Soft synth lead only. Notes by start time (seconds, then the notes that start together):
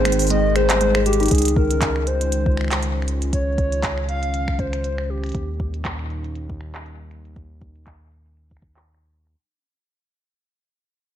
Already playing: C5
0.30 D#5
0.56 C5
1.06 G4
1.31 G#4
1.57 A#4
2.07 C5
3.33 C#5
4.09 F5
4.59 C5
5.10 G4